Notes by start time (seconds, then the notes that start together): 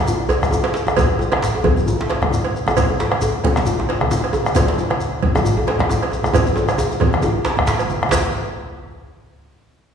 0.07 bombo rim, djembe bass, shekere
0.20 djembe slap, djembe tone
0.29 cowbell, djembe slap, djembe bass, shekere
0.42 bombo rim, bombo low, high conga, low conga, shekere
0.51 djembe slap, djembe tone, high conga, shekere
0.64 cowbell, djembe slap
0.74 djembe slap
0.75 djembe slap, shekere
0.86 bombo rim, djembe tone, high conga, shekere
0.97 bombo low, cowbell, djembe slap, low conga, djembe bass, shekere
1.19 bombo rim, high conga, djembe tone, shekere
1.32 bombo rim, cowbell, djembe slap, high conga
1.42 djembe slap, high conga, shekere
1.55 djembe tone
1.64 bombo low, cowbell, high conga, djembe tone, low conga, djembe bass
1.76 djembe slap, high conga, shekere
1.86 djembe tone, djembe bass, shekere
1.99 bombo rim, djembe slap, djembe tone
2.10 cowbell, djembe slap
2.22 bombo rim, bombo low, high conga, djembe tone, low conga
2.31 djembe slap, djembe tone, shekere
2.44 bombo rim, cowbell, djembe slap
2.54 high conga, shekere
2.67 bombo rim, high conga, djembe tone, shekere
2.77 bombo low, cowbell, djembe slap, low conga, djembe bass, shekere
2.90 djembe tone
2.99 bombo rim, djembe slap, high conga, djembe tone, shekere
3.11 bombo rim, cowbell, high conga
3.21 high conga, djembe tone, shekere
3.44 bombo low, cowbell, high conga, djembe tone, low conga
3.56 bombo rim, djembe slap, high conga, shekere
3.66 djembe bass, shekere
3.79 bombo rim, djembe tone
3.89 cowbell, djembe slap
4.01 bombo rim, bombo low, high conga, djembe tone
4.11 djembe slap, djembe tone, shekere
4.24 bombo rim, cowbell, djembe slap
4.33 djembe tone, high conga, shekere
4.45 bombo rim, high conga, shekere
4.55 bombo low, cowbell, djembe slap, djembe tone, low conga, djembe bass, shekere
4.68 djembe slap
4.78 bombo rim, high conga, djembe tone, shekere
4.90 bombo rim, cowbell, djembe slap, high conga
5.00 high conga, shekere
5.22 bombo low, cowbell, high conga, djembe tone, low conga
5.35 bombo rim, djembe slap, djembe tone, high conga, shekere
5.45 djembe bass, shekere
5.57 bombo rim, djembe tone
5.67 cowbell, djembe slap, djembe tone
5.79 bombo rim, bombo low, djembe slap, high conga, low conga
5.89 djembe slap, djembe tone, shekere
6.03 bombo rim, cowbell, djembe slap
6.11 high conga, djembe tone, shekere
6.24 bombo rim, high conga, djembe tone, shekere
6.33 bombo rim, bombo low, cowbell, djembe slap, djembe tone, low conga, djembe bass, shekere
6.46 bombo rim, djembe slap, shekere
6.56 djembe tone, shekere
6.68 bombo rim, cowbell, djembe slap, high conga, shekere
6.78 djembe slap, djembe tone, high conga, shekere
6.91 djembe slap, shekere
7.00 bombo low, cowbell, djembe tone, low conga
7.02 djembe tone
7.13 bombo rim, djembe slap, high conga
7.22 bombo rim, djembe tone, djembe bass, shekere
7.36 djembe tone
7.45 bombo rim, cowbell, djembe slap, shekere
7.57 bombo rim, bombo low, high conga, low conga
7.67 djembe slap, low conga, djembe bass, shekere
7.79 cowbell, low conga, djembe bass, shekere
7.90 bombo rim, djembe slap, high conga, shekere
8.02 bombo rim, djembe slap, high conga
8.11 bombo low, cowbell, djembe slap, low conga, djembe bass, shekere